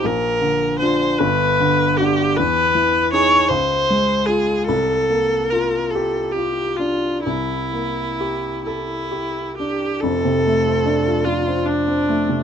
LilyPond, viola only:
\new Staff \with { instrumentName = "Viola" } { \time 6/8 \key f \major \tempo 4. = 49 bes'4 c''8 b'4 g'8 | b'4 des''8 c''4 aes'8 | a'4 bes'8 a'8 g'8 f'8 | e'4. e'4 g'8 |
a'4. f'8 d'4 | }